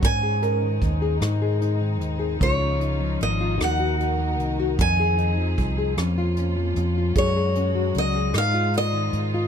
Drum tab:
HH |xxxxxx|xxxxxx|xxxxxx|xxxxxx|
SD |---r--|---r--|---r--|---r--|
BD |o-o---|o-----|o-o---|o-----|